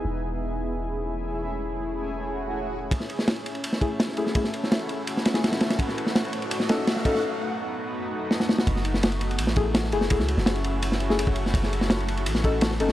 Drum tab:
RD |----------------|----------------|x-x-xxxxx-x-x-x-|x-x-xxx-x-xxxxxx|
SD |----------------|----------------|-o-oo----o--oo-o|-o-oo----ooooooo|
BD |----------------|----------------|o---------o-----|o---------------|

RD |x-x-xxxxx-x-x-x-|----------------|x-x-xxxxx-x-x-x-|x-x-xxx-x-x-x-x-|
SD |-o-oo----oo-oo-o|------------oooo|-o-oo----o--oo-o|-o-oo----o-o---o|
BD |o-------------o-|----------------|o---------o-----|o------------o--|

RD |x-x-xxxxx-x-x-x-|
SD |-o-oo----o--oo-o|
BD |o---------o-----|